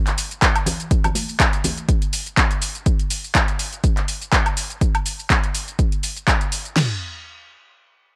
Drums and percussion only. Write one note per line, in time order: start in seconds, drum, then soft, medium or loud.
0.07 clap soft
0.07 closed hi-hat medium
0.07 shaker soft
0.18 open hi-hat loud
0.18 shaker medium
0.31 closed hi-hat soft
0.31 shaker soft
0.42 kick loud
0.42 clap loud
0.42 closed hi-hat medium
0.42 shaker soft
0.56 closed hi-hat medium
0.56 high woodblock medium
0.56 shaker soft
0.66 open hi-hat loud
0.66 low conga medium
0.66 shaker medium
0.80 closed hi-hat soft
0.80 shaker soft
0.91 kick loud
0.91 closed hi-hat medium
0.91 shaker soft
1.04 closed hi-hat medium
1.04 low conga medium
1.04 high woodblock medium
1.04 shaker soft
1.15 open hi-hat loud
1.15 high conga medium
1.15 shaker medium
1.29 shaker soft
1.40 kick loud
1.40 clap loud
1.40 closed hi-hat medium
1.40 shaker soft
1.53 closed hi-hat soft
1.53 shaker soft
1.64 open hi-hat loud
1.64 high conga medium
1.64 low conga medium
1.64 shaker medium
1.78 closed hi-hat soft
1.78 shaker soft
1.89 kick loud
1.89 closed hi-hat medium
1.89 shaker soft
2.02 closed hi-hat medium
2.02 shaker soft
2.13 open hi-hat loud
2.13 shaker medium
2.26 closed hi-hat soft
2.26 shaker soft
2.37 kick loud
2.37 clap loud
2.37 closed hi-hat medium
2.37 shaker soft
2.51 closed hi-hat medium
2.51 shaker soft
2.62 open hi-hat loud
2.62 shaker medium
2.75 closed hi-hat soft
2.75 shaker soft
2.86 kick loud
2.86 closed hi-hat medium
2.86 shaker soft
2.99 closed hi-hat soft
2.99 shaker soft
3.10 open hi-hat loud
3.10 shaker medium
3.24 shaker soft
3.35 kick loud
3.35 clap loud
3.35 closed hi-hat medium
3.35 shaker soft
3.48 closed hi-hat soft
3.48 shaker soft
3.59 open hi-hat loud
3.59 shaker medium
3.73 closed hi-hat soft
3.73 shaker soft
3.84 kick loud
3.84 closed hi-hat medium
3.84 shaker soft
3.97 clap soft
3.97 closed hi-hat soft
3.97 shaker soft
4.08 open hi-hat loud
4.08 shaker medium
4.22 closed hi-hat soft
4.22 shaker soft
4.33 kick loud
4.33 clap loud
4.33 closed hi-hat medium
4.33 shaker soft
4.46 closed hi-hat soft
4.46 high woodblock medium
4.46 shaker soft
4.57 open hi-hat loud
4.57 shaker medium
4.70 closed hi-hat soft
4.70 shaker soft
4.81 kick loud
4.81 closed hi-hat medium
4.81 shaker soft
4.95 closed hi-hat soft
4.95 high woodblock medium
4.95 shaker soft
5.06 open hi-hat loud
5.06 shaker medium
5.19 shaker soft
5.30 kick loud
5.30 clap loud
5.30 closed hi-hat medium
5.30 shaker soft
5.44 closed hi-hat soft
5.44 shaker soft
5.55 open hi-hat loud
5.55 shaker medium
5.68 closed hi-hat soft
5.68 shaker soft
5.79 kick loud
5.79 closed hi-hat medium
5.79 shaker soft
5.92 closed hi-hat soft
5.92 shaker soft
6.03 open hi-hat loud
6.03 shaker medium
6.17 closed hi-hat soft
6.17 shaker soft
6.28 kick loud
6.28 clap loud
6.28 closed hi-hat medium
6.28 shaker soft
6.41 closed hi-hat soft
6.41 shaker soft
6.52 open hi-hat loud
6.52 shaker medium
6.65 closed hi-hat soft
6.65 shaker soft
6.76 snare medium
6.76 floor tom medium
6.76 crash medium